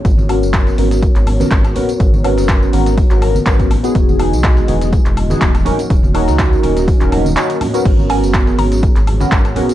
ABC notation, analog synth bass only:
X:1
M:4/4
L:1/16
Q:"Swing 16ths" 1/4=123
K:G#m
V:1 name="Analog synth bass" clef=bass
G,,,3 F,,,2 z G,,,2 z G,,,2 z G,,,2 z2 | G,,,3 F,,,2 z G,,,2 z G,,,2 z G,,,2 z2 | E,,,3 B,,,2 z E,,,2 z E,,,2 z D,,,2 z2 | D,,,3 C,,2 z D,,,2 z D,,,3 z4 |
G,,,3 F,,,2 z G,,,2 z G,,,2 z G,,,2 z2 |]